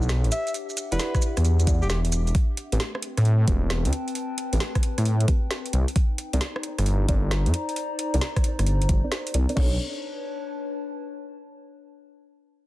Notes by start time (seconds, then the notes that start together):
Already playing: B1 D4 G4 B4 C#5 E5
0.02 maracas
0.09 snare, maracas
0.24 A1, closed hi-hat
0.31 E5 F#5, closed hi-hat, maracas
0.47 closed hi-hat, maracas
0.54 closed hi-hat, maracas
0.69 maracas
0.77 closed hi-hat, maracas
0.92 E1 E4 G4 B4 D5 F#5, closed hi-hat, maracas
0.99 snare, maracas
1.15 kick, cross-stick, closed hi-hat, maracas
1.22 closed hi-hat, maracas
1.37 E2, cross-stick, closed hi-hat, maracas
1.45 closed hi-hat, maracas
1.60 closed hi-hat, maracas
1.67 E4 G4 D5 F#5, kick, closed hi-hat, maracas
1.82 E1 G4, maracas
1.90 G4, snare, maracas
2.05 closed hi-hat
2.12 closed hi-hat, maracas
2.27 closed hi-hat, maracas
2.35 C4, kick, closed hi-hat
2.55 B4 G5, closed hi-hat
2.72 A1 A3 C4 G4 B4, closed hi-hat
2.80 snare
2.95 cross-stick
3.02 closed hi-hat
3.17 A2, cross-stick, closed hi-hat
3.25 closed hi-hat
3.35 A5
3.48 E1 A3 C4 G4 B4, kick, closed hi-hat
3.70 snare
3.85 D2, closed hi-hat
3.93 closed hi-hat
4.08 closed hi-hat
4.15 closed hi-hat
4.38 closed hi-hat
4.53 A1 A3 C4 G4 B4, closed hi-hat
4.60 snare
4.75 kick, cross-stick, closed hi-hat
4.83 closed hi-hat
4.98 A2, cross-stick, closed hi-hat
5.05 closed hi-hat
5.21 closed hi-hat
5.28 A3 C4 G4 B4, kick, closed hi-hat
5.51 snare
5.66 closed hi-hat
5.73 C2 D#4, closed hi-hat
5.88 closed hi-hat
5.96 kick, closed hi-hat
6.18 C5 A#5, closed hi-hat
6.33 C2 C4 D#4 A#4 D5, closed hi-hat
6.41 snare
6.56 cross-stick
6.63 closed hi-hat
6.74 D5
6.78 G1, cross-stick, closed hi-hat
6.86 closed hi-hat
7.09 G1 C4 D#4 A#4 D5, kick, closed hi-hat
7.31 snare
7.46 F2, closed hi-hat
7.54 closed hi-hat
7.69 closed hi-hat
7.76 closed hi-hat
7.99 closed hi-hat
8.14 C2 C4 D#4 A#4 D5, closed hi-hat
8.21 snare
8.36 kick, cross-stick, closed hi-hat
8.44 closed hi-hat
8.59 G1, cross-stick, closed hi-hat
8.67 closed hi-hat
8.82 closed hi-hat
8.89 G1, kick, closed hi-hat
9.04 C4 D#4 A#4 D5
9.12 snare
9.27 closed hi-hat
9.34 C2 C4 D#4 A#4 D5, closed hi-hat
9.49 C4 D#4 A#4 D5, closed hi-hat
9.57 B1 B3 D4 A4 C#5, kick, crash
9.66 B4
9.74 C#5
9.78 A5